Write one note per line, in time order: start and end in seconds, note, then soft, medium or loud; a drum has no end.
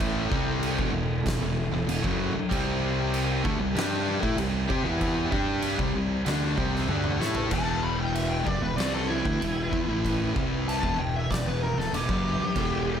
0.00 0.27 A1 medium
0.00 0.30 A2 medium
0.00 0.30 E3 medium
0.00 0.31 A3 loud
0.00 2.46 E4 medium
0.00 2.47 A4 medium
0.00 7.49 G5 medium
0.00 kick loud
0.00 crash medium
0.31 0.75 C2 medium
0.31 0.77 C3 loud
0.31 0.78 G3 loud
0.31 0.78 C4 loud
0.31 kick loud
0.63 crash medium
0.78 0.93 E1 loud
0.78 0.92 E2 medium
0.78 0.92 B2 loud
0.78 kick loud
0.93 1.23 E1 medium
0.93 1.19 E2 medium
0.93 1.19 B2 medium
1.26 1.40 E1 medium
1.26 1.41 E2 medium
1.26 1.41 B2 medium
1.26 kick loud
1.26 snare loud
1.26 crash medium
1.39 1.70 E1 medium
1.39 1.67 E2 medium
1.39 1.65 B2 medium
1.43 1.67 B2 medium
1.72 1.87 E1 medium
1.72 1.88 E2 medium
1.72 1.89 B2 medium
1.88 2.02 E1 medium
1.88 2.05 E2 medium
1.88 2.05 B2 medium
1.88 crash medium
2.02 2.33 F#1 loud
2.02 2.33 F#2 loud
2.02 2.33 C#3 medium
2.02 2.33 F#3 loud
2.02 kick loud
2.06 2.35 F#2 loud
2.06 2.36 C#3 loud
2.06 2.36 F#3 loud
2.35 muted fingered electric bass stroke soft
2.35 muted distorted electric guitar stroke medium
2.51 3.41 C2 medium
2.51 3.44 C3 medium
2.51 7.49 C3 medium
2.51 3.44 G3 loud
2.51 3.45 C4 loud
2.51 7.49 G4 medium
2.51 kick loud
2.51 crash medium
3.14 crash medium
3.45 3.57 D2 medium
3.45 3.60 D3 medium
3.45 3.60 A3 loud
3.45 kick loud
3.58 3.73 C2 medium
3.58 3.77 C3 medium
3.58 3.76 G3 medium
3.74 4.18 G2 loud
3.74 4.23 G3 loud
3.74 crash medium
3.78 4.23 D4 loud
3.78 4.23 G4 loud
3.78 snare loud
4.23 4.36 A2 loud
4.23 4.38 A3 medium
4.23 4.38 E4 loud
4.23 kick loud
4.36 4.66 C2 medium
4.36 4.62 C3 medium
4.36 crash medium
4.40 4.65 C3 medium
4.40 4.65 G3 medium
4.69 4.83 C3 loud
4.69 4.85 C4 loud
4.69 4.85 G4 loud
4.69 kick loud
4.83 5.28 E2 medium
4.83 5.31 E3 medium
4.83 5.30 B3 medium
4.83 5.31 E4 medium
4.83 5.31 E4 loud
4.88 5.33 E3 medium
4.88 5.33 B3 medium
4.88 5.34 E4 loud
5.01 kick loud
5.01 crash medium
5.32 5.76 G2 medium
5.32 5.79 G3 medium
5.32 5.80 D4 loud
5.32 5.80 G4 loud
5.32 kick loud
5.62 crash medium
5.77 5.94 C2 loud
5.77 5.93 C3 medium
5.77 kick loud
5.82 5.95 C3 medium
5.82 5.96 G3 loud
5.96 6.25 C2 medium
5.96 6.21 C3 medium
5.96 6.21 G3 medium
6.26 6.56 D2 medium
6.26 6.57 D3 loud
6.26 6.58 A3 loud
6.26 6.58 D4 loud
6.26 snare loud
6.26 crash medium
6.58 6.87 C2 loud
6.58 6.88 C3 medium
6.58 6.89 G3 loud
6.58 6.89 C4 loud
6.58 kick loud
6.76 snare soft
6.88 7.18 D2 loud
6.88 7.19 D3 medium
6.88 7.19 A3 medium
6.88 7.20 D4 loud
6.88 high tom medium
7.04 mid tom medium
7.20 7.49 A2 loud
7.20 7.51 A3 medium
7.20 7.51 E4 loud
7.20 7.51 A4 loud
7.20 snare medium
7.35 floor tom medium
7.51 8.42 E1 medium
7.51 8.45 E2 medium
7.51 8.45 B2 medium
7.51 8.46 E3 loud
7.51 12.52 B4 medium
7.51 13.00 E5 medium
7.51 13.00 G5 medium
7.51 7.83 A5 loud
7.51 kick loud
7.51 crash loud
7.51 crash medium
7.84 7.99 B5 medium
7.99 8.15 G5 medium
8.15 8.29 E5 medium
8.15 crash medium
8.30 8.45 G5 medium
8.46 8.61 F#1 medium
8.46 8.61 F#2 medium
8.46 8.61 C#3 loud
8.46 8.62 D5 loud
8.46 kick loud
8.62 8.77 E1 medium
8.62 8.78 E2 medium
8.62 8.76 B2 medium
8.62 8.76 B4 medium
8.76 9.21 C2 medium
8.76 9.23 C3 loud
8.76 9.24 G3 loud
8.76 9.24 C4 loud
8.76 8.92 D5 medium
8.76 crash medium
8.80 snare loud
8.94 9.09 A4 medium
9.08 10.30 E4 medium
9.25 9.40 D2 medium
9.25 9.40 D3 medium
9.25 9.40 A3 loud
9.25 kick loud
9.41 9.70 E1 medium
9.41 9.66 E2 medium
9.41 9.66 B2 medium
9.41 crash medium
9.71 9.87 E2 loud
9.71 9.87 E3 loud
9.71 9.87 B3 loud
9.71 kick loud
9.87 10.32 A1 medium
9.87 10.35 A2 medium
9.87 10.35 E3 medium
9.87 10.35 A3 loud
10.05 kick medium
10.05 crash medium
10.35 10.79 C2 medium
10.35 10.81 C3 medium
10.35 10.82 G3 loud
10.35 10.83 C4 loud
10.35 kick loud
10.68 10.98 A5 loud
10.68 crash medium
10.83 10.97 E1 medium
10.83 10.97 E2 loud
10.83 10.98 B2 medium
10.83 kick loud
10.98 11.27 E1 medium
10.98 11.24 E2 medium
10.98 11.24 B2 medium
10.98 11.14 G5 loud
11.16 11.30 E5 medium
11.30 11.43 E1 medium
11.30 11.46 E2 medium
11.30 11.46 B2 medium
11.30 11.46 D5 medium
11.30 kick loud
11.30 crash medium
11.34 snare loud
11.44 11.74 E1 medium
11.44 11.61 B4 medium
11.48 11.72 E2 medium
11.48 11.72 B2 medium
11.63 11.78 A#4 medium
11.76 11.91 E1 medium
11.76 11.93 E2 medium
11.76 11.94 B2 medium
11.76 11.92 A4 medium
11.76 snare soft
11.93 12.07 E1 medium
11.93 12.09 E2 medium
11.93 12.09 B2 medium
11.93 13.00 G4 medium
11.93 crash medium
12.08 12.37 F#1 medium
12.08 12.40 F#2 medium
12.08 12.40 C#3 loud
12.08 12.41 F#3 loud
12.08 kick loud
12.41 muted fingered electric bass stroke soft
12.41 muted distorted electric guitar stroke medium
12.55 13.00 E1 medium
12.55 13.00 E2 medium
12.55 13.00 B2 loud
12.55 13.00 E3 loud
12.55 13.00 A4 medium
12.55 kick loud
12.55 crash medium